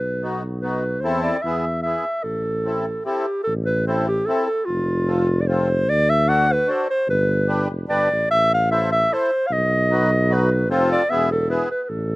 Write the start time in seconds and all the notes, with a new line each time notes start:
Already playing: B1 B4
0.22 B3 D#4 F#4
0.62 B3 D#4 F#4 B4
1.01 E2 C4 E4 A4 C5
1.23 D5
1.42 E2 B3 E4 E5
1.47 G#4
1.83 B3 E4 G#4 E5
2.24 A1 A4
2.65 C4 E4 A4
3.05 C4 E4 G4 A4
3.44 A1 A4
3.66 B4
3.87 C4 E4 A4 C5
4.08 G4
4.26 C4 E4 A4
4.47 A4
4.65 F1 F4
5.07 C4 F4 A4
5.41 D5
5.47 C4 F4 A4 C5
5.88 D2 D5
6.10 E5
6.26 D4 F#4 A4 F#5
6.52 B4
6.67 D4 F#4 A4 C5
6.90 C5
7.08 G1 B4
7.47 D4 G4 B4
7.70 F1
7.88 G1 D4 G4 B4 D5
8.11 A1
8.30 A1 E5
8.54 F5
8.71 E4 A4 C5 E5
8.92 E5
9.11 E4 A4 C5
9.47 B1 F5
9.53 D#5
9.91 D#4 F#4 B4
10.30 D#4 F#4 B4
10.70 F1 C4 F4 A4 C5
10.92 D5
11.10 E1 B3 E4 G#4 E5
11.32 A4
11.48 B3 E4 G#4 B4
11.71 B4
11.83 B4
11.89 A1 A4